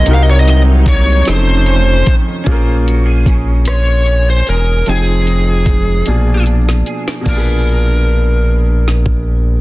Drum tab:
CC |------------|------------|------------|x-----------|
HH |x-x-x-x-x-x-|x-x-x-x-x-x-|x-x-x-x-x-x-|------------|
SD |------o-----|------r-----|---------o-o|--------o---|
BD |----o-----o-|o---o-------|----o-------|o--------o--|